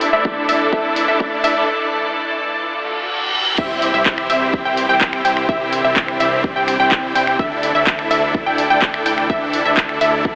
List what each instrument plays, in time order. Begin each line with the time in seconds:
Already playing: analog synth pad E3 A3 D4 A4 D5, supersaw synth D4 E4 A4 D5 E5, synth pluck E5, riser
0.01 open hi-hat
0.12 grand piano A3 D4 E4 A4, supersaw synth D4 E4 A4 D5 E5, synth pluck E5
0.25 kick
0.48 grand piano A3 D4 E4 A4, supersaw synth D4 E4 A4 D5 E5, synth pluck E5, open hi-hat
0.72 grand piano A3 D4 E4 A4, supersaw synth D4 E4 A4 D5 E5, synth pluck E5, kick
0.96 open hi-hat
1.08 grand piano A3 D4 E4 A4, supersaw synth D4 E4 A4 D5 E5, synth pluck E5
1.20 kick
1.43 grand piano A3 D4 E4 A4, supersaw synth D4 E4 A4 D5 E5, synth pluck E5, open hi-hat
2.63 reverse cymbal
3.58 analog synth bass C2, analog synth pad C3 E3 G3 E4 G4, supersaw synth C4 E4 G4 C5 E5, synth pluck E5, kick, crash, sub drop
3.82 open hi-hat
3.94 analog synth bass C2, supersaw synth C4 E4 G4 C5 E5, synth pluck E5
4.06 kick, clap
4.18 finger snap
4.30 analog synth bass C2, supersaw synth C4 E4 G4 C5 E5, synth pluck E5, open hi-hat
4.54 kick
4.65 analog synth bass C2, supersaw synth C4 E4 G4 C5 G5, synth pluck G5
4.77 open hi-hat
4.89 analog synth bass C2, supersaw synth C4 E4 G4 C5 G5, synth pluck G5
5.01 kick, clap
5.13 finger snap
5.25 analog synth bass C2, supersaw synth C4 E4 G4 C5 G5, synth pluck G5, open hi-hat
5.37 finger snap
5.49 analog synth bass C2, supersaw synth C4 E4 G4 C5 E5, analog synth pad D4, synth pluck E5, kick
5.73 open hi-hat
5.85 analog synth bass C2, supersaw synth C4 E4 G4 C5 E5, synth pluck E5
5.96 kick, clap
6.08 finger snap
6.20 analog synth bass C2, supersaw synth C4 E4 G4 C5 E5, synth pluck E5, open hi-hat
6.44 kick
6.56 analog synth bass C2, supersaw synth C4 E4 G4 C5 G5, synth pluck G5
6.68 finger snap, open hi-hat
6.80 analog synth bass C2, supersaw synth C4 E4 G4 C5 G5, synth pluck G5
6.92 kick, clap
7.15 analog synth bass C2, supersaw synth C4 E4 G4 C5 G5, synth pluck G5, open hi-hat
7.27 finger snap
7.39 analog synth bass D2, analog synth pad D3 E3 A3 E4 A4, supersaw synth D4 E4 A4 D5 E5, synth pluck E5, kick
7.63 open hi-hat
7.75 analog synth bass D2, supersaw synth D4 E4 A4 D5 E5, synth pluck E5
7.87 kick, clap
7.99 finger snap
8.11 analog synth bass D2, supersaw synth D4 E4 A4 D5 E5, synth pluck E5, open hi-hat
8.35 kick
8.46 analog synth bass D2, supersaw synth D4 E4 A4 D5 G5, synth pluck G5
8.58 open hi-hat
8.70 analog synth bass D2, supersaw synth D4 E4 A4 D5 G5, synth pluck G5
8.82 kick, clap
8.94 finger snap
9.06 analog synth bass D2, supersaw synth D4 E4 A4 D5 G5, synth pluck G5, open hi-hat
9.18 finger snap
9.30 analog synth bass D2, supersaw synth D4 E4 A4 D5 E5, analog synth pad D4, synth pluck E5, kick
9.53 open hi-hat
9.65 analog synth bass D2, supersaw synth D4 E4 A4 D5 E5, synth pluck E5
9.77 kick, clap
9.89 finger snap
10.01 analog synth bass D2, supersaw synth D4 E4 A4 D5 E5, synth pluck E5, open hi-hat
10.25 kick